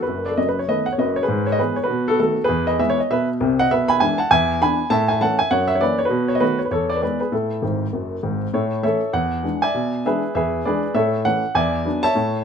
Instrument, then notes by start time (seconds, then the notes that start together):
grand piano
0.02 F#4 B4
0.08 F#1 F#2
0.26 A4 D5
0.37 F#1 F#2 D#5
0.49 B4
0.59 C#5
0.68 D#3 A3 B3 B4 D#5
0.86 F#5
0.92 C#5
0.98 F#1 F#2 B4 D#5
1.16 C#5
1.23 G#4 B4
1.28 G#2
1.46 C#5
1.52 D#5
1.59 E3 G#3 B3 G#4 B4
1.76 C#5
1.83 F#4 B4
1.90 B2
2.08 F#4 A4
2.19 D#3 A3 B3 F#4 A4
2.44 G#4 B4
2.49 E2
2.67 B4 D#5
2.79 E3 G#3 B3 E5
2.90 C#5
3.00 D#5
3.10 B2 B4 E5
3.40 C2 C3
3.59 D#5 F#5
3.71 B2 B4 E5
3.88 G#5 B5
4.00 E3 G#3 D4 E5 G#5
4.18 F#5 A5
4.31 E2 E5 G#5
4.61 E3 B3 D4 G#5 B5
4.90 A2 E5 A5
5.08 E5 G#5
5.21 E3 A3 C#4 F#5 A5
5.39 E5 G#5
5.51 F#2 C#5 F#5
5.68 E5
5.75 C#5
5.80 E3 A#3 C#4 B4 D5
5.98 C#5
6.05 F#4 B4
6.10 B2
6.28 C#5
6.35 D#5
6.40 D#3 A3 B3 F#4 B4
6.59 C#5
6.65 B4
6.71 E2 A4 C#5
6.90 D5
6.96 B4
7.02 E3 G#3 B3 B4 D5
7.20 G#4 B4
7.32 A2 E4 A4
7.62 G#1 G#2
7.93 F#1 F#2
8.23 G#1 G#2
8.53 A2 E4 A4 C#5
8.83 E3 A3 C#4 A4 C#5 E5
9.13 E2 F#5
9.43 E3 G#3 D4
9.62 D5 E5 G#5
9.74 B2
10.05 E3 G#3 D4 G#4 B4 E5
10.35 E2 G#4 B4 E5
10.65 E3 G#3 D4 G#4 B4 D5
10.94 A2 A4 C#5 E5
11.25 E3 A3 C#4 F#5
11.55 E2 D5 E5 G#5
11.85 F#3 B3 D4
12.03 C#5 E5 A5
12.15 A2